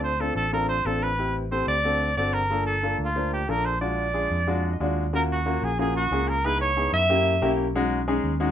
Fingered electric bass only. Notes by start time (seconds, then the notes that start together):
Already playing: D2
0.35 A1
0.85 A1
1.67 D2
2.17 G1
2.99 D2
3.48 A#1
4.30 F2
4.80 D#2
5.62 A#1
6.11 C#2
6.93 F#2
7.42 B1
8.24 D#2